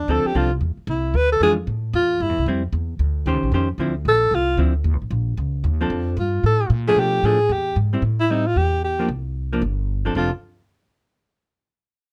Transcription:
Already playing: D4
0.08 D2 F3 C4 D4 A4
0.25 G4, muted upright bass stroke
0.35 C2 F3 C4 D4 F4 A4
0.61 E2
0.77 muted upright bass stroke
0.87 C2 E4
1.14 D2 B4
1.32 A4
1.40 F2 E3 G#3 D4 F4 G#4
1.67 A2
1.93 E2 F4
2.20 G2 E4
2.29 E2
2.38 C2
2.46 F2 G3 C4 E4
2.73 E2
2.99 D2
3.26 D#2 D#3 C#4 G4 C5
3.34 C#2
3.43 A#1
3.52 F2 D#3 C#4 G4 C5
3.78 D2 D3 F3 C4 E4
4.05 A#1 A4
4.31 C2 F4
4.57 D2 D3 F3 C4 E4
4.84 D#2
4.93 C#2
5.02 A#1
5.11 A#1
5.37 C#2
5.64 D#2
5.81 F3 C4 D4 A4
5.90 F2
6.17 G2 F4
6.44 A2 A4
6.70 A#2
6.88 F3 A3 D4 G#4
6.96 B2 G4
7.23 A2 F3 A3 D4 G#4
7.49 E2 G4
7.76 G#2
7.93 G3 C4 E4
8.02 A2
8.21 E4
8.30 G3 C4 D#4 E4
8.47 F4
8.56 E2 G4
8.84 G4
8.99 F3 A#3 D4
9.09 C2
9.53 F3 A#3 D4
9.62 G1
10.05 F3 C4 D4 A4
10.15 F1 F3 C4 D4 F4 A4

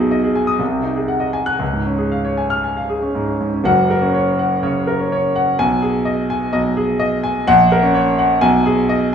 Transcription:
Already playing: B1 B2 D#4
0.00 G#4
0.11 D#5
0.24 G#4
0.36 G#5
0.47 D#6
0.59 C2
0.71 C3
0.83 D#4
0.96 G#4
1.08 F#5
1.20 D#5
1.33 G#5
1.46 F#6
1.59 C#2
1.73 G#2
1.86 C#4
1.98 G#4
2.12 F5
2.25 C#5
2.37 G#5
2.50 F6
2.64 G#5
2.77 F5
2.89 G#4
3.02 C#4
3.15 G#2
3.28 C#4
3.40 G#2
3.54 C#4
3.64 F#1 F#2 F#5
3.90 A#4
4.01 C#4
4.14 C#5
4.39 F#5
4.63 C#3 C#5
4.87 A#4
4.99 C#4
5.12 C#5
5.36 F#5
5.59 B1 G#5
5.82 G#4
6.05 D#5
6.30 G#5
6.53 B1 D#5
6.77 G#4
6.99 D#5
7.23 G#5
7.47 A#1 F#5
7.72 A#4
7.83 C#4
7.95 C#5
8.19 F#5
8.41 B1 G#5
8.66 G#4
8.89 D#5

